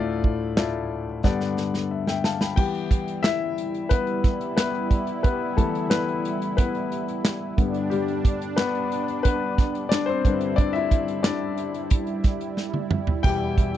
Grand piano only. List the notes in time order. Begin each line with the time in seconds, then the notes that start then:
Already playing: D2 A2 A3 E4 F4 D5
0.57 A3 E4 F4 D5
1.24 G2 D3 B3 D4 G4 D5
1.91 E5
2.08 E5 G5
2.24 F5 A5
2.41 G5 B5
2.56 E3 G3 B3 G4 G5
3.23 E4 E5
3.89 B3 B4
4.57 B3 B4
5.23 B3 B4
5.57 E3 G3 A3 B3 A4
5.90 B3 B4
6.57 B3 B4
7.57 G2 D3 B3
7.90 G3 G4
8.56 B3 B4
9.23 B3 B4
9.89 D4 D5
10.06 C4 C5
10.25 G2 D3 B4
10.56 D4 D5
10.73 E4 E5
11.23 D4 D5
13.23 E2 B2 G3 G4 G5